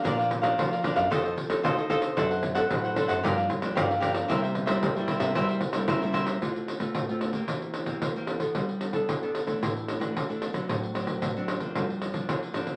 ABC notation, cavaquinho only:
X:1
M:4/4
L:1/16
Q:1/4=113
K:Cmix
V:1 name="Cavaquinho"
[DBdf] [Bdf] z [Bdf]2 [Bdf] [DBdf] [Bdf] [FAc_e] [Ace] z2 [FAce] [Ace] [FAce] [Ac] | [DAc^f] [Acf] z [Acf]2 [Acf] [DAcf] [Acf] [GBd=f] [Bdf] z2 [GBdf] [Bdf] [GBdf] [Bdf] | [EBce] [Bce] z [Bce]2 [Bce] [EBce] [Bce] [EBce] [Bce] z2 [EBce] [Bce] [EBce] [Bce] | [K:Dm] z16 |
z16 | z16 |]